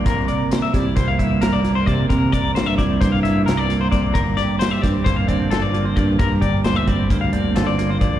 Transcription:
<<
  \new Staff \with { instrumentName = "Clean electric guitar" } { \time 9/8 \key c \mixolydian \tempo 4. = 88 bes'8 d''8 c''16 e''16 d''8 c''16 f''16 e''8 bes'16 d''8 c''16 d''8 | bes'8 d''8 c''16 e''16 d''8 c''16 f''16 e''8 bes'16 d''8 c''16 d''8 | bes'8 d''8 c''16 e''16 d''8 c''16 f''16 d''8 a'16 d''8 c''16 d''8 | bes'8 d''8 c''16 e''16 d''8 c''16 f''16 d''8 a'16 d''8 c''16 d''8 | }
  \new Staff \with { instrumentName = "Clean electric guitar" } { \time 9/8 \key c \mixolydian << { <bes c'>8 bes'4 e'8 bes8 e'8 bes'8 bes4~ | bes8 bes'4 e'8 bes8 e'8 bes'8 bes4~ | bes8 g'4 c'8 bes8 c'8 f'8 bes4~ | bes8 g'4 c'8 bes8 c'8 f'8 bes4 | } \\ { c4. g4 g,4. c8 | c4. g4 g,4. c8 | g,4. g4 d4. g,8 | g,4. g4 d4. g,8 | } >> }
  \new Staff \with { instrumentName = "Fingered electric bass" } { \clef bass \time 9/8 \key c \mixolydian c,8 r4 c16 r16 c,8 c,4. c8 | c8 c,8 g,8 c,8 g,4 c,4 c,8 | g,,8 r4 g,16 r16 g,,8 g,,4. g,8 | g,8 g,,8 d,8 g,,8 d,4 g,,4 bes,,8 | }
  \new DrumStaff \with { instrumentName = "Drums" } \drummode { \time 9/8 <hh bd>8 hh8 <hh sn>8 <hh bd sn>8 <hh bd sn>8 <hh bd>8 <hh sn>8 <hh sn>8 <hh bd sn>8 | <hh bd>8 <hh bd>8 <hh sn>8 <hh bd sn>8 <hh bd>8 <hh sn>8 <hh sn>8 <hh sn>8 <hh bd sn>8 | <hh bd>8 <hh sn>8 <hh sn>8 <hh bd sn>8 <hh bd sn>8 <hh bd>8 <hh sn>8 hh8 <hh bd>8 | <hh bd>8 <hh bd>8 <hh sn>8 <hh bd>8 <hh bd>8 hh8 <hh sn>8 <hh sn>8 <hh bd>8 | }
>>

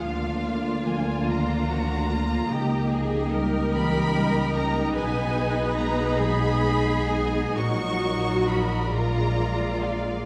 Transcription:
<<
  \new Staff \with { instrumentName = "Violin section" } { \time 12/8 \key ees \minor \tempo 4. = 48 f''4 aes''8 bes''2~ bes''8 r8 ces'''4 bes''8 | aes''4 bes''8 ces'''4 aes''8 des'''4 ces'''8 bes''4 f''8 | }
  \new Staff \with { instrumentName = "Violin section" } { \time 12/8 \key ees \minor << { f''2. ees''2.~ | ees''1~ ees''8 d''4. | } \\ { f'2. g'2. | aes'2. bes'2. | } >> }
  \new Staff \with { instrumentName = "Cello section" } { \time 12/8 \key ees \minor f'4. f'8 ges'8 f'8 g'8 aes'8 bes'2 | ces''4. aes'4. ges'4. f'4. | }
  \new Staff \with { instrumentName = "Viola section" } { \time 12/8 \key ees \minor << { d'2. ees'2.~ | ees'1~ ees'8 f'4. | } \\ { bes1. | ces'2. ges4. aes4. | } >> }
  \new Staff \with { instrumentName = "Harp" } { \clef bass \time 12/8 \key ees \minor <d f f'>8 f'8 f8 ees8 f8 d'8 des8 ees'8 g8 fes8 g8 des'8 | ces8 ees'8 aes8 ges8 aes8 ces'8 bes,8 ges8 <ees' bes'>8 bes,8 aes8 <d' bes'>8 | }
  \new Staff \with { instrumentName = "Double bass section" } { \clef bass \time 12/8 \key ees \minor d,2. des,2. | ces,2. bes,,2. | }
>>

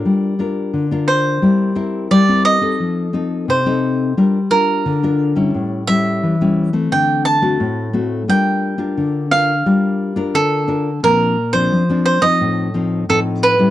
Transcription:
<<
  \new Staff \with { instrumentName = "Cavaquinho" } { \time 4/4 \key g \minor \tempo 4 = 88 r4. c''4. d''8 ees''8~ | ees''4 c''4. bes'4. | r8 e''4. g''8 a''4. | g''4. f''4. a'4 |
\key bes \major bes'8. c''8. c''16 ees''4~ ees''16 a'8 ces''8 | }
  \new Staff \with { instrumentName = "Nylon-string guitar" } { \time 4/4 \key g \minor << { <d' f' bes'>8 <d' f' bes'>8. <d' f' bes'>8. <c' e' bes'>8 <c' e' bes'>8. <c' e' bes'>8 <c' ees' a'>16~ | <c' ees' a'>8 <c' ees' a'>8. <c' ees' a'>8. <d' f' bes'>16 r16 <d' f' bes'>8. <d' f' bes'>8 <g cis' e'>16~ | <g cis' e'>8 <g cis' e'>8. <g cis' e'>8 <a c'>4 <a c' fis'>8. <a c' fis'>8 | <d' f' bes'>8. <d' f' bes'>8. <d' f' bes'>16 r16 <d' f' bes'>8. <d' f' bes'>8. <d' f' bes'>16 r16 |
\key bes \major <f c' d'>8 r16 <f c' d'>8 <f c' d'>8 <f c' ees'>8. <f c' ees'>8 <f c' ees'>8. <g des' e'>16 | } \\ { g4 d4 g4 g4 | f4 c4 g4 d4 | a,4 e4 d4 a,4 | g4 d4 g4 d4 |
bes,4 f4 a,4 a,4 | } >> }
>>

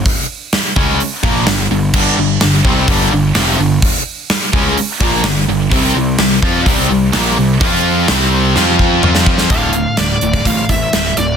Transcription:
<<
  \new Staff \with { instrumentName = "Lead electric guitar" } { \time 4/4 \key g \dorian \tempo 4 = 127 r1 | r1 | r1 | r1 |
r1 | f''4 d''4 f''8 e''4 d''8 | }
  \new Staff \with { instrumentName = "Distorted electric guitar" } { \clef bass \time 4/4 \key g \dorian r4. <cis gis cis'>8 r8 <bes, f bes>8 <g, d>8 <g, d>8 | <g, d g>8 <g, d>8 <g, d>8 <c g c'>8 <g, d g>8 <g, d>8 <f, c f>8 <g, d>8 | r4. <cis gis cis'>8 r8 <bes, f bes>8 <g, d>8 <g, d>8 | <c g c'>8 <c g>8 <c g>8 <f c' f'>8 <c g c'>8 <c g>8 <bes, f bes>8 <c g>8 |
<f c' f'>4 <c g c'>4 <f c' f'>4 <f c' f'>4 | r1 | }
  \new Staff \with { instrumentName = "Distorted electric guitar" } { \clef bass \time 4/4 \key g \dorian r4. <cis gis cis'>8 r8 <bes, f bes>8 <g, d>8 <g, d>8 | <g, d g>8 <g, d>8 <g, d>8 <c g c'>8 <g, d g>8 <g, d>8 <f, c f>8 <g, d>8 | r4. <cis gis cis'>8 r8 <bes, f bes>8 <g, d>8 <g, d>8 | <c g c'>8 <c g>8 <c g>8 <f c' f'>8 <c g c'>8 <c g>8 <bes, f bes>8 <c g>8 |
<f c' f'>4 <c g c'>4 <f c' f'>4 <f c' f'>4 | <d, a, d>8 <d, a,>8 <d, a,>8 <d, a,>8 <d, a,>8 <d, a,>8 <d, a,>8 <d, a,>8 | }
  \new Staff \with { instrumentName = "Distorted electric guitar" } { \clef bass \time 4/4 \key g \dorian r4. <cis gis cis'>8 r8 <bes, f bes>8 <g, d>8 <g, d>8 | <g, d g>8 <g, d>8 <g, d>8 <c g c'>8 <g, d g>8 <g, d>8 <f, c f>8 <g, d>8 | r4. <cis gis cis'>8 r8 <bes, f bes>8 <g, d>8 <g, d>8 | <c g c'>8 <c g>8 <c g>8 <f c' f'>8 <c g c'>8 <c g>8 <bes, f bes>8 <c g>8 |
<f c' f'>4 <c g c'>4 <f c' f'>4 <f c' f'>4 | <d, a, d>8 <d, a,>8 <d, a,>8 <d, a,>8 <d, a,>8 <d, a,>8 <d, a,>8 <d, a,>8 | }
  \new Staff \with { instrumentName = "Picked electric bass" } { \clef bass \time 4/4 \key g \dorian r4. cis,8 r8 bes,,8 g,,8 g,,8 | g,,8 g,,8 g,,8 c,8 g,,8 g,,8 f,,8 g,,8 | r4. cis,8 r8 bes,,8 g,,8 g,,8 | c,8 c,8 c,8 f,8 c,8 c,8 bes,,8 c,8 |
f,4 c,4 f,4 f,4 | d,,4 d,,8 d,,8 a,,8 a,,8 d,,8 d,,8 | }
  \new DrumStaff \with { instrumentName = "Drums" } \drummode { \time 4/4 <hho bd>4 <hho sn>8 bd8 hho8 bd8 <hho sn>4 | <cymc bd>4 <hho sn>8 bd8 <hho bd>4 <hho sn>4 | <hho bd>4 <hho sn>8 bd8 hho8 bd8 <hho sn>4 | <hho bd>4 <hho sn>8 bd8 <hho bd>4 <hho sn>4 |
<hho bd>4 <hho sn>4 sn8 bd8 toml16 sn16 bd16 sn16 | <hh bd>8 hh8 <hh sn>8 hh16 bd16 <hh bd>8 <hh bd>8 <hh sn>16 sn16 <hh sn>8 | }
>>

